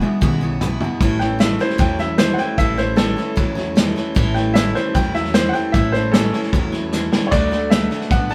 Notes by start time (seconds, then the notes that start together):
Already playing: G#5
0.01 E2 B2 E3 G#3 B3 E4, high tom
0.21 B1 E2 B2 C#3 E3 G#3 B3 E4, kick, mid tom
0.41 E2 C#3 E3 G#3 B3 E4
0.61 E2 B2 E3 G#3 B3, floor tom, hi-hat pedal
0.65 E4
0.81 E2 B2 E3 G#3 B3 E4, floor tom
1.00 A1 A2 E3 A3 C#4 E4, kick, snare
1.19 A2 E3 A3 C#4 E4 G5, snare
1.39 A2 E3 A3 C#4 E4 E5, snare, hi-hat pedal
1.59 A2 E3 A3 C#4 E4 C5, snare
1.70 snare
1.78 E2 A2 E3 F#3 A3 C#4 E4 G5, kick, snare
1.99 A2 F#3 A3 C#4 E4 E5, snare
2.18 A2 E3 A3 C#4 E4 C5, snare, hi-hat pedal
2.34 F#5
2.38 A2 E3 A3 C#4 E4 G5, snare
2.57 A1 A2 E3 A3 C#4 E4 E5, kick, snare
2.77 A2 E3 A3 C#4 E4 C5, snare
2.96 A2 E3 A3 E4 A4, snare, hi-hat pedal
3.16 A2 E3 A3 C#4 E4, snare
3.36 E2 A2 E3 F#3 A3 C#4 E4, kick, snare
3.55 A2 F#3 A3 C#4 E4, snare
3.75 A2 E3 A3 C#4 E4, snare, hi-hat pedal
3.96 A2 E3 A3 C#4 E4, snare
4.15 A1 A2 E3 A3 C#4 E4, kick, snare
4.35 A2 E3 A3 C#4 E4 G5, snare
4.54 A2 E3 A3 C#4 E4 E5, snare, hi-hat pedal
4.75 A2 E3 A3 C#4 E4 C5, snare
4.94 E2 A2 E3 F#3 A3 C#4 E4 G5, kick, snare
5.14 A2 F#3 A3 C#4 E4 E5, snare
5.25 snare
5.33 A2 E3 A3 C#4 C5, snare, hi-hat pedal
5.38 E4
5.49 F#5
5.53 A2 E3 A3 C#4 E4 G5, snare
5.72 A1 A2 E3 A3 C#4 E5, kick, snare
5.77 E4
5.92 A2 E3 C#4 E4 C5, snare
5.97 A3
6.12 A2 E3 A3 C#4 A4, snare, hi-hat pedal
6.16 C#4 E4
6.33 A2 E3 C#4 E4, snare
6.37 A3
6.43 snare
6.52 E2 A2 E3 F#3 A3 C#4 E4, kick, snare
6.72 A2 F#3 A3 C#4 E4, snare
6.92 A2 E3 A3 C#4, snare, hi-hat pedal
6.96 E4
7.12 A2 E3 A3 C#4 E4, snare
7.27 C#5
7.31 D2 D3 A3 D4 F#4 D5, kick, snare, splash
7.51 D3 A3 D4 F#4, snare
7.70 D3 A3 D4 E5, snare, hi-hat pedal
7.75 F#4
7.91 D3 A3 D4 F#4, snare
8.01 snare
8.11 A1 D3 A3 B3 D4 F#4 F#5, kick, snare
8.30 D3 D4 F#4 A5, snare